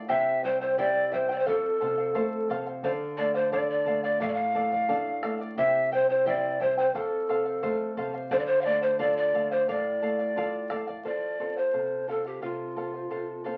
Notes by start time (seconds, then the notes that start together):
0.08 C3 E4 G4 C5 E5 G5, bombo low
0.44 G3 E4 C5 E5 G5
0.61 E4 C5 G5
0.78 E4 G4 C5 D5 E5 G5, bombo low
1.12 G3 E4 C5 E5 G5, bombo low
1.29 E4 C5 G5
1.35 D5
1.39 C5
1.46 F2 A4 C5 F5, bombo low
1.80 C3 A4 C5 F5
1.98 C5 F5
2.15 A3 A4 C5 F5, bombo low
2.48 C3 A4 C5 F5, bombo low
2.67 C5 F5
2.83 D3 A4 C5 D5 F5, bombo low
3.17 A3 A4 D5 F5
3.34 C5 D5 F5
3.51 D4 A4 D5 F5, bombo low
3.69 D5
3.86 A3 A4 D5 F5, bombo low
4.04 D5 F5
4.20 A2 A4 D5 F5, bombo low
4.29 D5
4.34 F5
4.54 A3 A4 D5 F5, bombo low
4.72 D5 F5, bombo low
4.88 D4 A4 D5 F5, bombo low
5.23 A3 A4 D5 F5, bombo rim
5.40 D5 F5
5.57 C3 E4 G4 C5 E5 G5, bombo low
5.91 G3 E4 C5 E5 G5
6.09 E4 C5 G5
6.26 E4 G4 C5 D5 E5 G5, bombo low
6.60 G3 E4 C5 E5 G5, bombo low
6.77 E4 C5 G5
6.94 F2 A4 C5 F5, bombo low
7.29 C3 A4 C5 F5
7.45 C5 F5
7.63 A3 A4 C5 F5, bombo low
7.97 C3 A4 C5 F5, bombo low
8.14 C5 F5
8.31 D3 A4 C5 D5 F5, bombo low
8.39 D5
8.46 C5
8.61 A4 D5 F5
8.65 A3 D5 F5
8.82 C5 D5 F5
8.99 F4 A4 D5 F5, bombo low
9.17 D5
9.34 A3 A4 D5 F5, bombo low
9.51 C5 D5 F5
9.68 A2 A4 D5 F5, bombo low
10.02 A3 A4 D5 F5
10.19 D5 F5
10.36 F4 A4 D5 F5, bombo low
10.70 A3 A4 D5 F5, bombo rim, bombo low
10.87 D5 F5, bombo low
11.05 F3 A4 C5 D5 F5
11.39 C4 F4 A4 C5 F5
11.57 C5 F5
11.73 C3 A4 C5 F5
12.07 C4 F4 A4 C5 F5
12.25 G4 C5 F5
12.42 C3 F4 A4 C5 F5
12.76 C4 F4 A4 C5 F5
12.94 C5 F5
13.10 C3 A4 C5 F5
13.44 C4 F4 A4 C5 F5